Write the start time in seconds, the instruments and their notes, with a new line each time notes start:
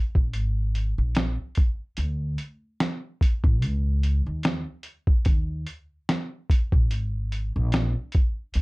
0.15 upright bass A#1, kick
0.34 upright bass G#1, closed hi-hat
0.75 closed hi-hat
0.98 upright bass A#1
1.15 snare, closed hi-hat
1.55 kick, closed hi-hat
1.97 upright bass D2, closed hi-hat
2.38 closed hi-hat
2.80 snare, closed hi-hat
3.21 kick, closed hi-hat
3.44 upright bass A1, kick
3.62 upright bass C#2, closed hi-hat
4.03 closed hi-hat
4.26 upright bass D#2
4.43 snare, closed hi-hat
4.83 closed hi-hat
5.07 kick
5.25 upright bass D#2, kick, closed hi-hat
5.67 closed hi-hat
6.09 snare, closed hi-hat
6.50 kick, closed hi-hat
6.72 upright bass A#1, kick
6.91 upright bass G#1, closed hi-hat
7.32 closed hi-hat
7.56 upright bass A#1
7.72 snare, closed hi-hat
8.12 kick, closed hi-hat
8.54 upright bass D2, closed hi-hat